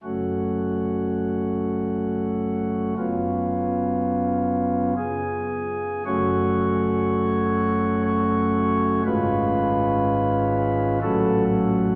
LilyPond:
<<
  \new Staff \with { instrumentName = "Pipe organ" } { \time 3/4 \key fis \minor \tempo 4 = 61 r2. | r2 gis'4 | cis''2 cis''4 | b'2 a'8 r8 | }
  \new Staff \with { instrumentName = "Pipe organ" } { \time 3/4 \key fis \minor <fis,, fis, a cis' fis'>2. | <fis,, fis, b cis' eis'>2 r4 | <fis,, fis, a cis' fis'>2. | <gis,, gis, gis cis' eis'>2 <a,, a, fis cis' fis'>4 | }
>>